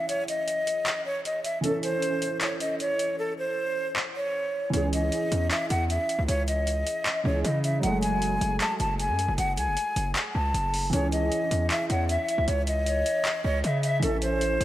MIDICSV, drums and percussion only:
0, 0, Header, 1, 2, 480
1, 0, Start_track
1, 0, Key_signature, 4, "minor"
1, 0, Tempo, 387097
1, 112, Time_signature, 4, 2, 24, 8
1, 18159, End_track
2, 0, Start_track
2, 0, Title_t, "Drums"
2, 110, Note_on_c, 9, 42, 83
2, 234, Note_off_c, 9, 42, 0
2, 351, Note_on_c, 9, 42, 75
2, 475, Note_off_c, 9, 42, 0
2, 590, Note_on_c, 9, 42, 79
2, 714, Note_off_c, 9, 42, 0
2, 832, Note_on_c, 9, 42, 82
2, 956, Note_off_c, 9, 42, 0
2, 1070, Note_on_c, 9, 39, 125
2, 1071, Note_on_c, 9, 42, 83
2, 1194, Note_off_c, 9, 39, 0
2, 1195, Note_off_c, 9, 42, 0
2, 1554, Note_on_c, 9, 42, 71
2, 1678, Note_off_c, 9, 42, 0
2, 1792, Note_on_c, 9, 42, 72
2, 1916, Note_off_c, 9, 42, 0
2, 2030, Note_on_c, 9, 42, 85
2, 2154, Note_off_c, 9, 42, 0
2, 2270, Note_on_c, 9, 42, 75
2, 2394, Note_off_c, 9, 42, 0
2, 2509, Note_on_c, 9, 42, 77
2, 2633, Note_off_c, 9, 42, 0
2, 2751, Note_on_c, 9, 42, 79
2, 2875, Note_off_c, 9, 42, 0
2, 2989, Note_on_c, 9, 39, 121
2, 2990, Note_on_c, 9, 42, 84
2, 3113, Note_off_c, 9, 39, 0
2, 3114, Note_off_c, 9, 42, 0
2, 3229, Note_on_c, 9, 42, 67
2, 3353, Note_off_c, 9, 42, 0
2, 3472, Note_on_c, 9, 42, 70
2, 3596, Note_off_c, 9, 42, 0
2, 3712, Note_on_c, 9, 42, 74
2, 3836, Note_off_c, 9, 42, 0
2, 4912, Note_on_c, 9, 39, 119
2, 5036, Note_off_c, 9, 39, 0
2, 5872, Note_on_c, 9, 42, 83
2, 5996, Note_off_c, 9, 42, 0
2, 6112, Note_on_c, 9, 42, 78
2, 6236, Note_off_c, 9, 42, 0
2, 6351, Note_on_c, 9, 42, 79
2, 6475, Note_off_c, 9, 42, 0
2, 6594, Note_on_c, 9, 42, 79
2, 6718, Note_off_c, 9, 42, 0
2, 6832, Note_on_c, 9, 39, 124
2, 6833, Note_on_c, 9, 42, 82
2, 6956, Note_off_c, 9, 39, 0
2, 6957, Note_off_c, 9, 42, 0
2, 7071, Note_on_c, 9, 42, 67
2, 7195, Note_off_c, 9, 42, 0
2, 7315, Note_on_c, 9, 42, 71
2, 7439, Note_off_c, 9, 42, 0
2, 7553, Note_on_c, 9, 42, 72
2, 7677, Note_off_c, 9, 42, 0
2, 7793, Note_on_c, 9, 42, 86
2, 7917, Note_off_c, 9, 42, 0
2, 8033, Note_on_c, 9, 42, 76
2, 8157, Note_off_c, 9, 42, 0
2, 8271, Note_on_c, 9, 42, 80
2, 8395, Note_off_c, 9, 42, 0
2, 8514, Note_on_c, 9, 42, 83
2, 8638, Note_off_c, 9, 42, 0
2, 8751, Note_on_c, 9, 39, 117
2, 8752, Note_on_c, 9, 42, 85
2, 8875, Note_off_c, 9, 39, 0
2, 8876, Note_off_c, 9, 42, 0
2, 9233, Note_on_c, 9, 42, 71
2, 9357, Note_off_c, 9, 42, 0
2, 9473, Note_on_c, 9, 42, 73
2, 9597, Note_off_c, 9, 42, 0
2, 9712, Note_on_c, 9, 42, 85
2, 9836, Note_off_c, 9, 42, 0
2, 9951, Note_on_c, 9, 42, 77
2, 10075, Note_off_c, 9, 42, 0
2, 10190, Note_on_c, 9, 42, 77
2, 10314, Note_off_c, 9, 42, 0
2, 10433, Note_on_c, 9, 42, 79
2, 10557, Note_off_c, 9, 42, 0
2, 10671, Note_on_c, 9, 39, 119
2, 10672, Note_on_c, 9, 42, 80
2, 10795, Note_off_c, 9, 39, 0
2, 10796, Note_off_c, 9, 42, 0
2, 10911, Note_on_c, 9, 42, 67
2, 11035, Note_off_c, 9, 42, 0
2, 11154, Note_on_c, 9, 42, 70
2, 11278, Note_off_c, 9, 42, 0
2, 11393, Note_on_c, 9, 42, 74
2, 11517, Note_off_c, 9, 42, 0
2, 11631, Note_on_c, 9, 42, 87
2, 11755, Note_off_c, 9, 42, 0
2, 11872, Note_on_c, 9, 42, 76
2, 11996, Note_off_c, 9, 42, 0
2, 12111, Note_on_c, 9, 42, 77
2, 12235, Note_off_c, 9, 42, 0
2, 12354, Note_on_c, 9, 42, 78
2, 12478, Note_off_c, 9, 42, 0
2, 12593, Note_on_c, 9, 39, 127
2, 12593, Note_on_c, 9, 42, 82
2, 12717, Note_off_c, 9, 39, 0
2, 12717, Note_off_c, 9, 42, 0
2, 13076, Note_on_c, 9, 42, 70
2, 13200, Note_off_c, 9, 42, 0
2, 13314, Note_on_c, 9, 46, 80
2, 13438, Note_off_c, 9, 46, 0
2, 13552, Note_on_c, 9, 42, 87
2, 13676, Note_off_c, 9, 42, 0
2, 13793, Note_on_c, 9, 42, 76
2, 13917, Note_off_c, 9, 42, 0
2, 14032, Note_on_c, 9, 42, 77
2, 14156, Note_off_c, 9, 42, 0
2, 14275, Note_on_c, 9, 42, 81
2, 14399, Note_off_c, 9, 42, 0
2, 14513, Note_on_c, 9, 39, 122
2, 14514, Note_on_c, 9, 42, 82
2, 14637, Note_off_c, 9, 39, 0
2, 14638, Note_off_c, 9, 42, 0
2, 14753, Note_on_c, 9, 42, 68
2, 14877, Note_off_c, 9, 42, 0
2, 14996, Note_on_c, 9, 42, 71
2, 15120, Note_off_c, 9, 42, 0
2, 15234, Note_on_c, 9, 42, 71
2, 15358, Note_off_c, 9, 42, 0
2, 15472, Note_on_c, 9, 42, 83
2, 15596, Note_off_c, 9, 42, 0
2, 15712, Note_on_c, 9, 42, 77
2, 15836, Note_off_c, 9, 42, 0
2, 15951, Note_on_c, 9, 42, 78
2, 16075, Note_off_c, 9, 42, 0
2, 16193, Note_on_c, 9, 42, 83
2, 16317, Note_off_c, 9, 42, 0
2, 16431, Note_on_c, 9, 39, 121
2, 16432, Note_on_c, 9, 42, 84
2, 16555, Note_off_c, 9, 39, 0
2, 16556, Note_off_c, 9, 42, 0
2, 16913, Note_on_c, 9, 42, 68
2, 17037, Note_off_c, 9, 42, 0
2, 17153, Note_on_c, 9, 42, 76
2, 17277, Note_off_c, 9, 42, 0
2, 17392, Note_on_c, 9, 42, 86
2, 17516, Note_off_c, 9, 42, 0
2, 17630, Note_on_c, 9, 42, 77
2, 17754, Note_off_c, 9, 42, 0
2, 17871, Note_on_c, 9, 42, 76
2, 17995, Note_off_c, 9, 42, 0
2, 18113, Note_on_c, 9, 42, 79
2, 18159, Note_off_c, 9, 42, 0
2, 18159, End_track
0, 0, End_of_file